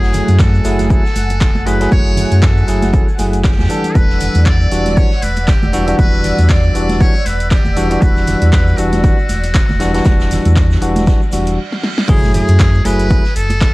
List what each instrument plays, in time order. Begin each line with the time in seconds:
Already playing: sub bass F#1, tine electric piano F#3 A3 E4 G#4, analog synth pad A3 F#5 G#5 F#6, muted trumpet G#4
0.03 snare, shaker
0.14 snare, open hi-hat, ride, low conga, shaker
0.28 sub bass F#2, closed hi-hat, high conga, shaker
0.39 muted trumpet A4, kick, snare, clap, closed hi-hat, low conga, shaker
0.54 shaker
0.64 sub bass F#1, tine electric piano F#3 A3 E4 G#4, snare, open hi-hat, ride, shaker
0.79 snare, closed hi-hat, high conga, shaker
0.90 tine electric piano F#3 A3 E4 G#4, muted trumpet A4, kick, closed hi-hat, ride, shaker
1.05 snare, shaker
1.15 sub bass F#1, snare, open hi-hat, ride, high conga, shaker
1.29 closed hi-hat, muted conga, shaker
1.41 kick, snare, clap, closed hi-hat, shaker
1.55 sub bass F#1, muted conga, high conga, low conga, shaker
1.66 tine electric piano F#3 A3 E4 G#4, muted trumpet B4, snare, open hi-hat, ride, shaker
1.80 tine electric piano F#3 A3 E4 G#4, snare, closed hi-hat, muted conga, shaker
1.91 sub bass F#1, muted trumpet C#5, kick, closed hi-hat, high conga, shaker
2.06 shaker
2.17 open hi-hat, low conga, shaker
2.31 sub bass F#2, closed hi-hat, high conga, shaker
2.42 muted trumpet A4, kick, snare, clap, closed hi-hat, ride, low conga, shaker
2.58 shaker
2.67 sub bass F#1, tine electric piano F#3 A3 E4 G#4, snare, open hi-hat, ride, shaker
2.83 snare, closed hi-hat, high conga, shaker
2.93 tine electric piano F#3 A3 E4 G#4, kick, closed hi-hat, ride, shaker
3.08 shaker
3.19 sub bass F#1, tine electric piano F#3 A3 E4 G#4, snare, open hi-hat, ride, high conga, shaker
3.33 closed hi-hat, shaker
3.44 muted trumpet G4, kick, snare, clap, closed hi-hat, shaker
3.51 snare, ride
3.59 sub bass F#2, snare, ride, high conga, low conga, shaker
3.64 snare, ride
3.69 tine electric piano E3 G3 D4 A4, analog synth pad D5 E6, snare, open hi-hat, ride, shaker
3.84 closed hi-hat, muted conga, shaker
3.95 sub bass E1, muted trumpet B4, kick, closed hi-hat, ride, high conga, shaker
4.10 snare, shaker
4.20 snare, open hi-hat, ride, low conga, shaker
4.35 sub bass E2, closed hi-hat, high conga, shaker
4.45 muted trumpet D5, kick, snare, clap, closed hi-hat, low conga, shaker
4.61 shaker
4.71 sub bass E1, tine electric piano E3 G3 D4 F#4, snare, open hi-hat, ride, shaker
4.86 snare, closed hi-hat, high conga, shaker
4.97 tine electric piano G3 F#4, muted trumpet C#5, kick, closed hi-hat, shaker
5.11 snare, shaker
5.22 sub bass E1, muted trumpet B4, open hi-hat, ride, high conga, shaker
5.36 closed hi-hat, muted conga, shaker
5.48 muted trumpet G4, kick, snare, clap, closed hi-hat, shaker
5.62 sub bass E1, snare, muted conga, high conga, low conga, shaker
5.73 tine electric piano E3 G3 D4 F#4, open hi-hat, ride, shaker
5.87 tine electric piano E3 G3 D4 F#4, closed hi-hat, muted conga, shaker
5.98 sub bass E1, muted trumpet B4, kick, closed hi-hat, high conga, shaker
6.14 shaker
6.24 open hi-hat, low conga, shaker
6.38 sub bass E2, closed hi-hat, high conga, shaker
6.49 muted trumpet D5, kick, snare, clap, closed hi-hat, low conga, shaker
6.63 shaker
6.75 sub bass E1, tine electric piano E3 G3 D4 F#4, open hi-hat, ride, shaker
6.89 snare, closed hi-hat, high conga, shaker
7.00 tine electric piano E3 G3 D4 F#4, muted trumpet C#5, kick, closed hi-hat, shaker
7.15 shaker
7.25 sub bass E1, muted trumpet B4, snare, open hi-hat, ride, high conga, shaker
7.40 closed hi-hat, shaker
7.51 muted trumpet G4, kick, snare, clap, closed hi-hat, shaker
7.65 sub bass E1, high conga, low conga, shaker
7.76 tine electric piano E3 G3 D4 F#4, snare, open hi-hat, ride, shaker
7.90 tine electric piano E3 G3 D4 F#4, closed hi-hat, muted conga, shaker
8.02 sub bass E1, muted trumpet B4, kick, closed hi-hat, ride, high conga, shaker
8.17 snare, shaker
8.27 snare, open hi-hat, ride, low conga, shaker
8.42 sub bass E2, closed hi-hat, high conga, shaker
8.52 muted trumpet B4, kick, snare, clap, closed hi-hat, low conga, shaker
8.67 shaker
8.78 sub bass E1, tine electric piano E3 G3 D4 F#4, muted trumpet F#4, open hi-hat, ride, shaker
8.93 snare, closed hi-hat, high conga, shaker
9.03 tine electric piano E3 G3 D4 F#4, kick, snare, closed hi-hat, ride, shaker
9.18 ride, shaker
9.29 sub bass E1, snare, open hi-hat, high conga, shaker
9.43 snare, closed hi-hat, ride, muted conga, shaker
9.54 kick, snare, clap, closed hi-hat, shaker
9.69 sub bass E1, snare, muted conga, high conga, low conga, shaker
9.80 tine electric piano E3 G3 D4 F#4, snare, open hi-hat, ride, shaker
9.93 tine electric piano E3 G3 D4 F#4, snare, closed hi-hat, ride, muted conga, shaker
10.05 sub bass E1, kick, snare, closed hi-hat, ride, high conga, shaker
10.20 snare, ride, shaker
10.31 snare, open hi-hat, ride, low conga, shaker
10.45 sub bass E2, closed hi-hat, high conga, shaker
10.56 kick, snare, clap, closed hi-hat, low conga, shaker
10.70 snare, ride, shaker
10.81 sub bass E1, tine electric piano E3 G3 D4 F#4, open hi-hat, shaker
10.96 snare, closed hi-hat, ride, muted conga, high conga, shaker
11.07 tine electric piano D4 F#4, kick, snare, closed hi-hat, reverse cymbal, shaker
11.22 shaker
11.32 sub bass E1, tine electric piano E3 G3 D4 F#4, snare, open hi-hat, ride, high conga, shaker
11.47 closed hi-hat, shaker
11.72 snare
11.84 snare
11.98 snare
12.08 sub bass F#1, tine electric piano F#3 A3 E4 G#4, muted trumpet G#4, kick, closed hi-hat, crash, sub drop, shaker
12.23 snare, high conga, shaker
12.34 muted trumpet G#4, snare, open hi-hat, ride, low conga, shaker
12.48 sub bass F#2, closed hi-hat, shaker
12.60 kick, snare, clap, closed hi-hat, shaker
12.74 shaker
12.85 sub bass F#1, tine electric piano F#3 A3 E4 G#4, muted trumpet B4, snare, open hi-hat, ride, high conga, shaker
12.99 snare, closed hi-hat, shaker
13.10 tine electric piano F#3 A3 E4 G#4, kick, closed hi-hat, ride, shaker
13.25 snare, shaker
13.36 sub bass F#1, muted trumpet A4, open hi-hat, ride, shaker
13.50 closed hi-hat, muted conga, high conga, shaker
13.61 kick, snare, clap, closed hi-hat, shaker